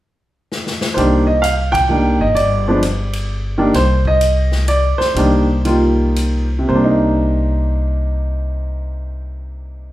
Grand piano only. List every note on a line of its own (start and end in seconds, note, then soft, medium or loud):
0.94 1.25 D#3 medium
0.94 1.25 G3 medium
0.94 1.25 A#3 medium
0.94 1.24 C5 medium
0.99 1.26 D4 medium
1.27 1.41 D#5 medium
1.42 1.71 F5 medium
1.72 2.21 G5 loud
1.89 2.17 D#3 medium
1.89 2.17 G3 soft
1.89 2.18 A#3 soft
1.89 2.18 D4 medium
2.21 2.35 D#5 medium
2.35 3.55 D5 medium
2.68 2.81 F3 medium
2.68 2.81 G#3 medium
2.68 2.81 B3 medium
2.68 2.82 D4 medium
3.58 3.72 D#3 medium
3.58 3.72 G3 medium
3.58 3.72 A#3 medium
3.58 3.73 D4 medium
3.75 4.07 C5 medium
4.07 4.70 D#5 medium
4.68 5.01 D5 medium
4.98 6.47 C5 medium
5.16 5.46 D#3 medium
5.16 5.45 G3 medium
5.16 5.46 A#3 medium
5.16 5.46 D4 medium
5.65 6.44 D#3 medium
5.65 6.45 G3 medium
5.65 6.45 A#3 medium
5.65 6.45 F4 medium
6.59 9.93 C3 medium
6.67 9.93 A#3 medium
6.67 9.93 C5 medium
6.75 9.93 D4 medium
6.84 9.93 D#4 medium